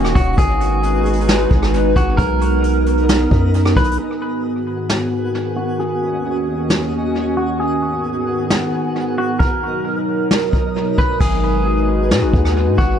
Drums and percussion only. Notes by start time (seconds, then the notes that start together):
0.05 cross-stick
0.16 kick, closed hi-hat
0.38 kick, closed hi-hat
0.61 closed hi-hat
0.83 closed hi-hat
1.06 closed hi-hat
1.13 closed hi-hat
1.21 closed hi-hat
1.28 snare, closed hi-hat
1.51 kick
1.63 cross-stick
1.74 closed hi-hat
1.96 kick, closed hi-hat
2.18 kick, closed hi-hat
2.41 closed hi-hat
2.64 closed hi-hat
2.86 closed hi-hat
2.97 closed hi-hat
3.09 snare, closed hi-hat
3.31 kick
3.54 closed hi-hat
3.65 cross-stick
3.76 kick, closed hi-hat
3.84 closed hi-hat
3.91 closed hi-hat
4.89 snare
6.70 snare
8.50 snare
9.40 kick
10.31 snare
10.53 kick
10.98 kick
11.21 kick, crash
12.11 snare
12.34 kick
12.45 cross-stick
12.79 kick